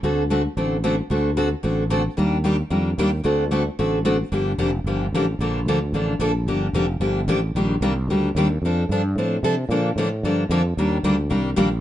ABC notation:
X:1
M:4/4
L:1/8
Q:"Swing" 1/4=224
K:Gm
V:1 name="Steel-string acoustic guitar"
[D,A,C^FA] z [D,A,CFA] z [D,A,CFA] z [D,A,CFA] z | [D,A,C^FA] z [D,A,CFA] z [D,A,CFA] z [D,A,CFA] z | [E,G,B,DG] z [E,G,B,DG] z [E,G,B,DG] z [E,G,B,DG] z | [D,A,C^FA] z [D,A,CFA] z [D,A,CFA] z [D,A,CFA] z |
[D,F,B,DG] z [D,F,B,DG] z [D,F,B,DG] z [D,F,B,DG] z | [K:Bb] [D,F,B,DA] z [D,F,B,DA] z [D,F,B,DA] z [D,F,B,DA] z | [D,F,B,DG] z [D,F,B,DG] z [D,F,B,DG] z [D,F,B,DG] z | [E,G,B,DG] z [E,G,B,DG] z [E,G,B,DG] z [E,G,B,DG] z |
[F,CDA] z [F,CDA] z [F,CDA] z [F,CDA] z | [D,F,B,DA] z [D,F,B,DA] z [D,F,B,DA] z [D,F,B,DA] z | [E,G,B,DG] z [E,G,B,DG] z [E,G,B,DG] z [E,G,B,DG] z |]
V:2 name="Fretless electric bass" clef=bass
D,,4 A,,,4 | D,,4 A,,,4 | E,,4 F,,2 E,,2 | D,,4 A,,,4 |
G,,,2 F,,,2 G,,,2 A,,,2 | [K:Bb] B,,,2 D,,2 A,,,2 B,,,2 | G,,,2 F,,,2 G,,,2 A,,,2 | B,,,2 C,,2 D,,2 E,,2 |
F,,2 G,,2 A,,2 C,2 | B,,2 A,,2 G,,2 F,,2 | E,,2 D,,2 C,,2 B,,,2 |]